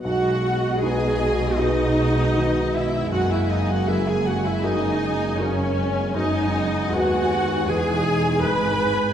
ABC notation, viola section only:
X:1
M:4/4
L:1/16
Q:1/4=79
K:B
V:1 name="Viola section"
F4 G4 D6 E2 | F E D F E G F E D4 C4 | D4 F4 G4 B4 |]